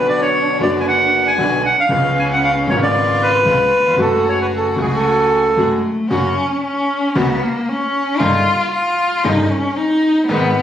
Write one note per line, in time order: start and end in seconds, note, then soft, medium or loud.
0.00 0.56 B1 medium
0.00 0.57 B1 medium
0.00 0.57 B2 medium
0.00 0.56 D3 medium
0.00 0.57 F#3 medium
0.00 0.58 B3 medium
0.00 0.56 D4 medium
0.00 1.91 D4 medium
0.00 0.57 F#4 medium
0.00 0.58 F#4 medium
0.00 0.57 B4 medium
0.09 0.21 D5 medium
0.22 0.58 C#5 medium
0.59 1.35 F#1 medium
0.59 1.35 F#2 medium
0.59 1.34 D3 medium
0.59 1.35 F#3 medium
0.59 1.35 B3 medium
0.59 1.34 D4 medium
0.59 1.35 F#4 medium
0.59 1.36 F#4 medium
0.59 1.35 B4 medium
0.59 0.70 D5 medium
0.80 0.87 G#5 medium
0.88 1.27 F#5 medium
1.27 1.63 G#5 medium
1.38 1.60 B1 medium
1.38 1.61 B1 medium
1.38 1.60 B2 medium
1.38 1.60 D3 medium
1.38 1.60 F#3 medium
1.38 1.61 B3 medium
1.38 1.60 D4 medium
1.38 1.60 F#4 medium
1.38 1.60 B4 medium
1.65 1.77 F#5 medium
1.80 2.19 F5 medium
1.89 2.64 C#2 medium
1.89 2.65 C#2 medium
1.89 2.65 C#3 medium
1.89 2.65 G#3 medium
1.89 2.65 B3 medium
1.89 2.95 C#4 medium
1.89 2.65 C#4 medium
1.89 2.65 F4 medium
1.89 2.66 F4 medium
1.89 2.65 B4 medium
2.19 2.24 G#5 medium
2.33 2.43 F#5 medium
2.44 2.55 F5 medium
2.67 3.42 G#1 medium
2.67 3.43 G#1 medium
2.67 3.43 G#2 medium
2.67 3.42 C#3 medium
2.67 3.43 G#3 medium
2.67 3.44 B3 medium
2.67 3.43 C#4 medium
2.67 3.43 F4 medium
2.67 3.43 B4 medium
2.67 2.76 C#5 medium
2.72 3.44 F4 medium
2.83 3.22 D5 medium
2.94 3.46 F4 medium
3.22 3.96 B4 medium
3.45 3.68 C#2 medium
3.45 3.69 C#3 medium
3.45 3.68 G#3 medium
3.45 3.69 B3 medium
3.45 3.69 C#4 medium
3.45 4.01 F4 medium
3.45 3.69 F4 medium
3.45 3.69 B4 medium
3.79 3.86 D#2 soft
3.86 3.92 E2 medium
3.91 3.98 F2 medium
3.96 4.73 F#1 medium
3.96 4.73 F#2 medium
3.96 4.72 C#3 medium
3.96 4.73 F#3 medium
3.96 4.73 G#3 medium
3.96 4.73 A3 medium
3.96 4.52 F#4 medium
3.96 4.74 F#4 medium
3.96 4.74 G#4 medium
4.02 4.25 A4 medium
4.29 4.39 C#5 medium
4.41 4.47 B4 medium
4.52 5.54 F#4 medium
4.52 4.67 A4 medium
4.77 5.53 C#2 medium
4.77 5.53 C#3 medium
4.77 5.53 F#3 medium
4.77 5.54 A3 medium
4.77 5.53 F#4 medium
4.77 5.54 F#4 medium
4.77 5.53 G#5 medium
4.81 4.86 G#4 medium
4.95 5.69 A4 medium
5.56 5.79 F#1 medium
5.56 5.80 F#2 medium
5.56 5.80 C#3 medium
5.56 5.80 F#3 medium
5.56 5.80 G#3 medium
5.56 6.11 A3 medium
5.56 5.80 A3 medium
5.56 5.80 F#4 medium
5.56 5.80 G#4 medium
6.09 6.32 F#1 medium
6.09 6.33 F#2 medium
6.09 6.32 C#3 medium
6.09 6.33 F#3 medium
6.09 6.33 A#3 medium
6.09 6.63 C#4 medium
6.09 6.33 C#4 medium
6.09 6.33 F#4 medium
6.64 7.18 C#4 medium
7.15 7.37 C#2 medium
7.15 7.38 C#2 medium
7.15 7.38 C#3 medium
7.15 7.38 F#3 medium
7.15 7.37 A#3 medium
7.15 7.38 A#3 medium
7.15 7.44 B3 medium
7.15 7.38 C#4 medium
7.15 7.38 F#4 medium
7.43 7.70 A#3 medium
7.69 8.20 C#4 medium
8.19 8.42 G1 medium
8.19 8.42 G2 medium
8.19 8.42 C#3 medium
8.19 8.42 G3 medium
8.19 8.42 A#3 medium
8.19 8.42 C#4 medium
8.19 8.42 D#4 medium
8.19 8.72 F4 loud
8.72 9.26 F4 medium
9.24 9.46 G1 medium
9.24 9.47 G1 medium
9.24 9.47 G2 medium
9.24 9.46 C#3 medium
9.24 9.46 G3 medium
9.24 9.47 G3 medium
9.24 9.47 A#3 medium
9.24 9.46 C#4 medium
9.24 9.52 D#4 loud
9.24 9.46 D#4 medium
9.24 9.47 D#4 medium
9.50 9.78 C#4 medium
9.76 10.27 D#4 medium
10.28 10.51 G#1 medium
10.28 10.51 G#2 medium
10.28 10.51 D#3 medium
10.28 10.51 G#3 medium
10.28 10.62 B3 medium
10.28 10.51 B3 medium
10.28 10.51 D#4 medium
10.28 10.51 G#4 medium